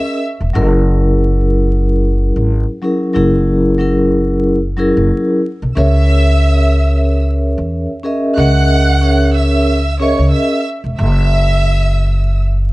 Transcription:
Already playing: C#4 G#4 A#4 D#5 E5 E6
0.40 E1
0.53 F#1 F#3 C#4 E4 G#4 A#4
2.36 G#1
2.82 F#3 C#4 E4 G#4 A#4
3.13 F#1 F#3 C#4 E4 G#4 A#4
3.78 F#3 C#4 E4 G#4 A#4
4.77 F#3 C#4 E4 G#4 A#4
4.97 F#1
5.62 B1
5.76 C#2 C#4 G#4 A#4 C#5 E5 E6
7.58 E2
8.03 C#4 G#4 A#4 D#5 E5
8.36 C#2 C#4 G#4 A#4 D#5 E5 F#5 F#6
9.01 C#4 G#4 A#4 C#5 E5
9.35 E5 E6
10.00 C#4 G#4 A#4 C#5 D#5 E5 C#6
10.19 C#2
10.32 E5 E6
10.84 E1
10.98 F#1 E5 E6

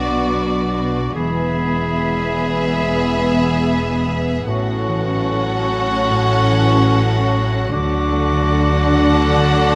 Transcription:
Already playing: B1 B2 F#3 B3 D4 F#4 D5 D6
0.33 F#4
0.74 D4
1.15 E1 E2 E3 G#3 B3 G#4 E5 B5
1.57 E4
1.97 G#4
2.38 B3
2.80 E3
3.22 E4
3.62 G#4
4.05 B3
4.46 A1 A2 F#3 C#4 F#4 A4 F#5 C#6
4.88 E3
5.29 F#4
5.70 C#4
6.10 A2
6.51 E3
6.92 F#4
7.32 C#4
7.71 D2 D3 F#3 D4 F#4 A4 F#5 D6
8.12 A3
8.53 F#4
8.95 D4
9.36 D3

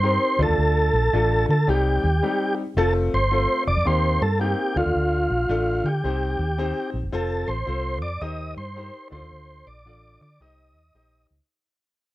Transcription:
Already playing: G2 C5
0.03 C4 D#4 G4 A#4
0.39 D2 A3 D4 F4 A4
0.49 D#2
0.58 D2
0.93 A#1
1.13 A1 A3 D4 F4 A4
1.49 D3 A4
1.67 C2 G3 C4 D#4 G4
2.04 D#2
2.23 G3 C4 D#4 G4
2.77 F1 A3 C4 F4 A4
3.14 G1 C5
3.31 A3 C4 F4 A4
3.67 F1 D5
3.77 F2
3.85 D#2 A#3 C4 D#4 G4 C5
4.21 G2 A4
4.40 A#3 C4 D#4 G4
4.76 D2 A3 D4 F4 A4
4.86 D#2
4.95 D2
5.30 A#1
5.49 A1 A3 D4 F4 A4
5.84 D3 G4
6.04 C2 C4 D#4 G4 C5
6.39 D#2
6.58 C4 D#4 G4 C5
6.94 A#1
7.03 F#1
7.12 F1 C4 F4 A4 C5
7.48 A1 C5
7.66 C2 C4 F4 A4 C5
8.02 F2 D5
8.21 D#2 D#4 G4 A#4 C5 D#5
8.57 G2 C5
8.76 D#4 G4 A#4 C5
9.11 D2 D4 F4 A4 C5 D5
9.21 D#2
9.31 D2
9.67 A#1 D5
9.85 A1 D4 F4 A4 D5
10.21 D3 D5
10.40 C2 D#4 G4 C5 D#5
10.75 D#2
10.95 A#1 D#4 G4 C5 D#5
11.30 C#2

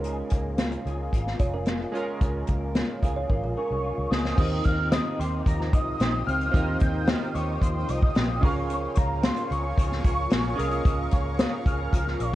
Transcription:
Already playing: C#2 G#3 C#4 F4 A#4
0.04 C#3 G#4, closed hi-hat
0.30 C#2 A#3, kick, closed hi-hat
0.58 F4, snare, closed hi-hat
0.71 closed hi-hat
0.85 C#2 G#4, closed hi-hat
1.12 G#1 F4, kick, closed hi-hat
1.27 snare
1.39 F1 F4 G#4 C#5, kick, closed hi-hat
1.54 C#4 A#4
1.65 F4, snare, closed hi-hat
1.81 G#4
1.92 G#3 C#4 F4 G#4, closed hi-hat
1.96 A#4
2.21 C#2 C#3 G#4, kick, closed hi-hat
2.47 C#2 A#3, kick, closed hi-hat
2.75 F4, snare, closed hi-hat
3.02 C#2 G#4 F5, kick, closed hi-hat
3.16 F4 C#5
3.29 G#1 C#4 F4 A#4, kick
3.44 A#1 G#4
3.56 C#4 G#4 A#4 C#6
3.71 C2 G#4
3.83 F4
3.98 C#2
4.10 C#2 G#4 D#6, snare
4.25 snare
4.36 D#2 D#3 C4 F4 G4 A#4 C5 F5 G5 D#6, kick, crash
4.41 D#5
4.64 D#2 C4 F6, kick, closed hi-hat
4.91 D#4 D#6, snare, closed hi-hat
5.19 D#2 G4 C6, closed hi-hat
5.46 D#2 F3 A#5, kick, closed hi-hat
5.60 snare
5.73 C2 D#4 D#6, kick, closed hi-hat
5.99 A#1 G4, snare, closed hi-hat
6.27 C#2 C4 F6, closed hi-hat
6.41 closed hi-hat
6.51 D#2 D#3 C4 F4 G4 A#4, kick, closed hi-hat
6.57 D#5
6.80 D#2 C4 G6, kick, closed hi-hat
7.08 D#4 F6, snare, closed hi-hat
7.34 D#2 G4 C#6, closed hi-hat
7.61 D#2 F3 C6, kick, closed hi-hat
7.88 C2 D#4 D#6, closed hi-hat
8.02 kick
8.15 A#1 G4, snare, closed hi-hat
8.41 C#2 C#3 C#4 F4 G#4 A#4 G#5 C#6, kick, open hi-hat
8.45 F5
8.69 C#3, closed hi-hat
8.95 C#2 A#3 A#5, kick, closed hi-hat
9.22 F4 C6, snare, closed hi-hat
9.36 closed hi-hat
9.50 C#2 G#4 C#6, closed hi-hat
9.76 C#2 F3, kick, closed hi-hat
9.92 snare
10.03 C#2 F4 C#6, kick, closed hi-hat
10.30 A#1 G#4, snare, closed hi-hat
10.55 C2 A#3 C#4 F4 G#4 A#4 A#5 D#6, closed hi-hat
10.60 F5
10.71 closed hi-hat
10.85 C#2 C#3, kick, closed hi-hat
11.11 C#2 A#3 C#6, kick, closed hi-hat
11.38 F4 D#6, snare, closed hi-hat
11.66 C#2 G#4 F6, kick, closed hi-hat
11.92 C#2 F3, kick, closed hi-hat
12.08 snare
12.19 A#1 F4 C#6, closed hi-hat

